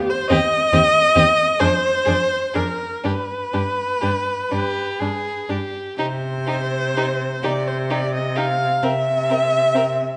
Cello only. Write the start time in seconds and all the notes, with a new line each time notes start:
0.31 D#2
0.73 D#2
1.16 D#2
1.61 F2
2.06 F2
2.55 F2
3.04 G2
3.54 G2
4.03 G2
4.52 G2
5.01 G2
5.50 G2
5.99 C3
7.44 C3
8.84 C3